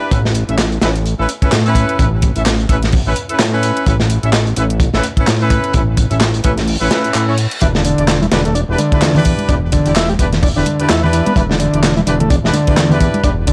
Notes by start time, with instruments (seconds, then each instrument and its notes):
0.11 analog synth bass A1, horn section C#4 E4 A4 B4, kick, closed hi-hat
0.25 snare
0.35 closed hi-hat
0.49 analog synth bass A1, horn section C#4 E4 A4 E5, closed hi-hat
0.58 snare, clap, closed hi-hat
0.72 closed hi-hat
0.81 analog synth bass A1, horn section C#4 E4 A4 B4, snare, closed hi-hat
0.95 closed hi-hat
1.06 closed hi-hat
1.19 analog synth bass A1, horn section C#4 E4 A4 B4
1.29 closed hi-hat
1.42 analog synth bass A2, horn section C#4 E4 A4 B4, kick, closed hi-hat
1.52 analog synth bass A2, snare, clap, closed hi-hat
1.66 horn section C#4 E4 A4 B4, closed hi-hat
1.75 kick, closed hi-hat
1.89 closed hi-hat
1.99 analog synth bass A1, horn section C#4 E4 A4 B4, kick, closed hi-hat
2.22 kick, closed hi-hat
2.36 analog synth bass A1, horn section C#4 E4 A4 E5, closed hi-hat
2.46 snare, clap, closed hi-hat
2.60 closed hi-hat
2.69 analog synth bass A1, horn section C#4 E4 A4 B4, kick, closed hi-hat
2.82 snare, closed hi-hat
2.92 kick, closed hi-hat, open hi-hat
3.06 analog synth bass A1, horn section C#4 E4 A4 B4
3.16 closed hi-hat
3.29 analog synth bass A2, horn section C#4 E4 A4 B4, closed hi-hat
3.39 analog synth bass A2, snare, clap, closed hi-hat
3.53 horn section C#4 E4 A4 B4
3.63 closed hi-hat
3.77 closed hi-hat
3.86 analog synth bass A1, horn section C#4 E4 A4 B4, kick, closed hi-hat
4.00 snare
4.10 closed hi-hat
4.23 analog synth bass A1, horn section C#4 E4 A4 E5, closed hi-hat
4.33 snare, clap, closed hi-hat
4.47 closed hi-hat
4.56 analog synth bass A1, horn section C#4 E4 A4 B4, closed hi-hat
4.70 closed hi-hat
4.80 kick, closed hi-hat
4.94 analog synth bass A1, horn section C#4 E4 A4 B4, snare
5.03 closed hi-hat
5.17 analog synth bass A2, horn section C#4 E4 A4 B4, kick, closed hi-hat
5.27 analog synth bass A2, snare, clap, closed hi-hat
5.40 horn section C#4 E4 A4 B4, closed hi-hat
5.50 kick, closed hi-hat
5.64 closed hi-hat
5.73 analog synth bass A1, horn section C#4 E4 A4 B4, kick, closed hi-hat
5.97 kick, closed hi-hat
6.11 analog synth bass A1, horn section C#4 E4 A4 E5, closed hi-hat
6.20 snare, clap, closed hi-hat
6.34 closed hi-hat
6.44 analog synth bass A1, horn section C#4 E4 A4 B4, kick, closed hi-hat
6.58 snare, closed hi-hat
6.68 closed hi-hat, open hi-hat, reverse cymbal
6.81 analog synth bass A1, horn section C#4 E4 A4 B4
6.91 horn section C#4 E4 A4 B4, snare, closed hi-hat
7.04 analog synth bass A2, closed hi-hat
7.14 analog synth bass A2, clap, closed hi-hat
7.28 horn section C#4 E4 A4 C#5
7.38 closed hi-hat
7.51 closed hi-hat
7.61 analog synth bass E1, transistor combo organ E3, horn section D4 E4 G4 B4, kick, closed hi-hat
7.75 transistor combo organ D3, snare
7.85 transistor combo organ D3, closed hi-hat
7.98 analog synth bass E1, horn section D4 E4 G4 D5, closed hi-hat
8.08 snare, clap, closed hi-hat
8.22 transistor combo organ E3, closed hi-hat, high conga
8.31 analog synth bass E1, transistor combo organ D3, horn section D4 E4 G4 B4, snare, closed hi-hat
8.45 transistor combo organ A3, closed hi-hat, low conga
8.55 transistor combo organ D4, closed hi-hat
8.69 analog synth bass E1, horn section D4 E4 G4 B4
8.78 transistor combo organ D3, closed hi-hat, high conga
8.92 analog synth bass E2, horn section D4 E4 G4 B4, kick, closed hi-hat
9.02 analog synth bass E2, snare, clap, closed hi-hat
9.15 horn section D4 E4 G4 B4, closed hi-hat, low conga
9.25 kick, closed hi-hat
9.38 closed hi-hat, high conga
9.49 analog synth bass E1, transistor combo organ D4, horn section D4 E4 G4 B4, kick, closed hi-hat
9.72 transistor combo organ D3, kick, closed hi-hat
9.86 analog synth bass E1, horn section D4 E4 G4 D5, closed hi-hat
9.96 transistor combo organ E4, snare, clap, closed hi-hat
10.09 transistor combo organ G3, closed hi-hat, high conga
10.19 analog synth bass E1, horn section D4 E4 G4 B4, kick, closed hi-hat
10.32 snare, closed hi-hat, low conga
10.43 transistor combo organ D4, kick, closed hi-hat, open hi-hat
10.56 analog synth bass E1, transistor combo organ D3, horn section D4 E4 G4 B4
10.66 closed hi-hat, high conga
10.80 analog synth bass E2, horn section D4 E4 G4 B4, closed hi-hat
10.89 analog synth bass E2, transistor combo organ E4, snare, clap, closed hi-hat
11.03 horn section D4 E4 G4 B4, low conga
11.13 transistor combo organ E3, closed hi-hat
11.26 transistor combo organ B3, closed hi-hat, high conga
11.36 analog synth bass E1, transistor combo organ E3, horn section D4 E4 G4 B4, kick, closed hi-hat
11.50 transistor combo organ D3, snare
11.60 transistor combo organ D3, closed hi-hat
11.74 analog synth bass E1, horn section D4 E4 G4 D5, closed hi-hat
11.83 snare, clap, closed hi-hat
11.97 transistor combo organ E3, closed hi-hat, high conga
12.07 analog synth bass E1, transistor combo organ D3, horn section D4 E4 G4 B4, closed hi-hat
12.20 transistor combo organ A3, closed hi-hat, low conga
12.30 transistor combo organ D4, kick, closed hi-hat
12.44 analog synth bass E1, horn section D4 E4 G4 B4, snare
12.53 transistor combo organ D3, closed hi-hat, high conga
12.67 analog synth bass E2, horn section D4 E4 G4 B4, kick, closed hi-hat
12.77 analog synth bass E2, snare, clap, closed hi-hat
12.90 horn section D4 E4 G4 B4, closed hi-hat, low conga
13.01 kick, closed hi-hat
13.14 closed hi-hat, high conga
13.23 analog synth bass E1, transistor combo organ D4, horn section D4 E4 G4 B4, kick, closed hi-hat
13.47 transistor combo organ D3, kick, closed hi-hat